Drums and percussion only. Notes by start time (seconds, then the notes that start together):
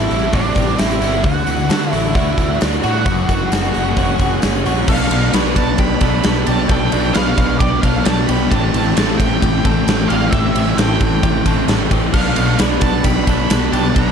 0.11 open hi-hat
0.23 tambourine
0.33 kick, open hi-hat, tambourine
0.46 tambourine
0.55 kick, open hi-hat, tambourine
0.78 snare, open hi-hat, tambourine
0.91 tambourine
1.01 open hi-hat, tambourine
1.24 kick, open hi-hat
1.47 open hi-hat, tambourine
1.70 snare, open hi-hat, tambourine
1.93 open hi-hat
2.04 tambourine
2.15 kick, open hi-hat, tambourine
2.27 tambourine
2.38 kick, open hi-hat, tambourine
2.61 snare, open hi-hat, tambourine
2.73 tambourine
2.83 open hi-hat, tambourine
3.06 kick, open hi-hat, tambourine
3.18 tambourine
3.29 kick, open hi-hat, tambourine
3.40 tambourine
3.52 snare, open hi-hat, tambourine
3.74 open hi-hat, tambourine
3.97 kick, open hi-hat
4.19 kick, open hi-hat, tambourine
4.42 snare, open hi-hat, tambourine
4.55 tambourine
4.66 open hi-hat, tambourine
4.88 kick, crash
5.11 ride
5.33 snare, ride
5.56 kick, ride
5.78 kick, ride
6.01 kick, ride
6.23 snare, ride
6.47 ride
6.69 kick, ride
6.92 ride
7.15 snare, ride
7.38 kick, ride
7.60 kick, ride
7.83 kick, ride
8.05 snare, ride
8.29 ride
8.52 kick, ride
8.74 ride
8.97 snare, ride
9.20 kick, ride
9.42 kick, ride
9.65 kick, ride
9.88 snare, ride
10.10 ride
10.32 kick, ride
10.56 ride
10.78 snare, ride
11.01 kick, ride
11.23 kick, ride
11.46 kick, ride
11.68 snare, ride
11.91 kick, ride
12.14 kick, crash, tambourine
12.25 tambourine
12.36 ride, tambourine
12.59 snare, ride, tambourine
12.81 kick, ride, tambourine
13.04 kick, ride, tambourine
13.16 tambourine
13.27 kick, ride, tambourine
13.39 tambourine
13.50 snare, ride, tambourine
13.73 ride, tambourine
13.85 tambourine
13.96 kick, ride, tambourine
14.08 tambourine